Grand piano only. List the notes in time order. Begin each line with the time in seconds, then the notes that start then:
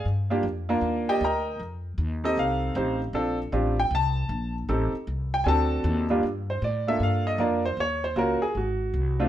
0.30 A#3 D4 F4 G4
0.69 A#3 D4 F4 A#4
1.09 G4 D5 D#5 G5
1.24 A#4 D#5 G5 A#5
2.24 C4 D#4 G4 A4 D#5
2.39 F5
2.76 C4 D#4 G4 C5
3.14 C4 D4 F4 A4
3.52 C4 D4 F4 G4
3.80 G5
3.95 A5
4.69 C4 D#4 G4 A4
5.34 G5
5.44 C4 D4 F#4 A4 G#5
5.48 A5
6.10 G2 A#3 D4 F4 G4
6.50 C5
6.64 D5
6.87 A#3 D4 F4 A4 E5
7.03 F5
7.27 D#5
7.39 A#3 D4 F4 A#4 D5
7.65 C5
7.80 C#5
8.04 C5
8.16 A#3 C#4 F4 F#4 A#4
8.42 G#4
8.57 F#4
9.20 A3 C4 D4 F4